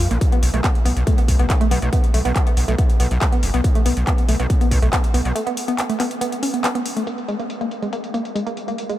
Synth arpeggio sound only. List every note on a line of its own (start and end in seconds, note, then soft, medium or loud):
0.11 0.13 A#3 medium
0.32 0.38 B3 loud
0.54 0.58 A3 loud
0.64 0.67 B3 loud
0.85 0.92 B3 loud
1.07 1.11 A3 loud
1.18 1.21 B3 loud
1.39 1.46 B3 loud
1.61 1.65 A3 loud
1.71 1.74 B3 loud
1.93 1.99 B3 loud
2.14 2.18 A3 loud
2.25 2.28 B3 loud
2.47 2.53 B3 loud
2.68 2.72 A3 loud
2.78 2.81 B3 loud
3.00 3.06 B3 loud
3.21 3.26 A3 loud
3.32 3.35 B3 loud
3.54 3.60 B3 loud
3.75 3.79 A3 loud
3.86 3.88 B3 loud
4.07 4.14 B3 loud
4.29 4.33 A3 loud
4.40 4.42 B3 loud
4.61 4.67 B3 loud
4.82 4.86 A3 loud
4.93 4.95 B3 loud
5.14 5.21 B3 loud
5.36 5.40 A3 loud
5.47 5.49 B3 loud
5.68 5.74 B3 loud
5.90 5.94 A3 loud
6.00 6.02 B3 loud
6.21 6.28 B3 loud
6.43 6.45 C#4 medium
6.54 6.58 B3 medium
6.64 6.68 B3 medium
6.75 6.78 B3 medium
6.97 7.03 A3 medium
7.07 7.13 A#3 medium
7.28 7.33 G#3 loud
7.40 7.42 A#3 loud
7.61 7.67 A#3 loud
7.82 7.86 G#3 loud
7.93 7.95 A#3 loud
8.14 8.21 A#3 loud
8.35 8.40 G#3 loud
8.47 8.49 A#3 loud
8.68 8.74 A#3 loud
8.89 8.94 G#3 loud